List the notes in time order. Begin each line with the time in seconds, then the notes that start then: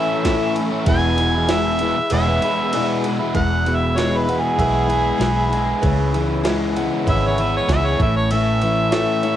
Already playing: E3 A3 C#4 E4 A4 E5 C#6 E6
0.23 A2 E3 A3 C#4 E4 A4 C#5 E5, kick, snare, ride
0.56 A3 C#4 E4, ride
0.71 A3 C#4 E4
0.85 E1 E2 B2 E3 G#3 B3 E4 G#4 B4 E5 G#5 B5, kick, ride
1.17 E3 G#3 B3 E4, ride
1.35 E3 G#3 B3 E4
1.47 E2 B2 E3 G#3 B3 E4 G#4 B4 E5, snare, ride
1.53 E5
1.65 muted overdriven electric guitar stroke
1.79 E3 G#3 B3 E4, ride
1.97 muted overdriven electric guitar stroke
2.10 E1 E3 G#3 B3 E4 G#4 B4 C#5 E5, ride
2.26 E3 G#3 B3 E4
2.42 E3 G#3 B3 E4, ride
2.46 E3
2.73 E2 B2 E3 G#3 B3 E4 G#4 B4 D5, ride
3.04 E3 G#3 B3 E4, ride
3.19 E3 G#3 B3 E4
3.33 E1 E2 B2 E3 G#3 B3 E4 G#4 B4 E5 F#5 B5 E6, kick, ride
3.66 B2 E3 G#3 B3 E4, ride
3.76 E5
3.95 E2 B2 E3 G#3 B3 E4 G#4 B4 C#5, snare, ride
4.18 B4
4.25 E3 G#3 B3 E4, ride
4.40 G#4
4.56 B1 E3 G#3 B3 E4 G#4, kick, ride
4.61 B4
4.86 E3 G#3 B3 E4, ride
5.17 B1 E2 B2 E3 G#3 B3 E4 G#4, snare, ride
5.22 B4
5.48 E3 G#3 B3 E4
5.53 ride
5.81 C#2 C#3 E3 G#3 B3 E4 B4 C#5 E6, kick, ride
6.12 E3 G#3 B3 E4, ride
6.43 C#3 E3 G#3 B3 E4 B4 C#5, snare, ride
6.76 G#3 B3 E4, ride
7.05 G#1 E3 G#3 B3 E4 B4 C#5, kick, ride
7.10 E5
7.27 C#5
7.38 G#3 B3 E4 E5, ride
7.57 C#5
7.67 C#2 C#3 E3 G#3 B3 E4 B4 C#5, kick, snare, ride
7.72 E5
7.86 C#5
7.97 A1 A2 C#4 E4 A4 C#5 E5 C#6, kick, ride
8.02 A3 E5
8.16 C#5
8.30 A2 E3 A3 C#4 E4 E5, ride
8.62 E3 A3 C#4 E4, ride
8.90 A2 E3 A3 C#4 E4 A4 E5, snare, ride
9.23 A3 C#4 E4, ride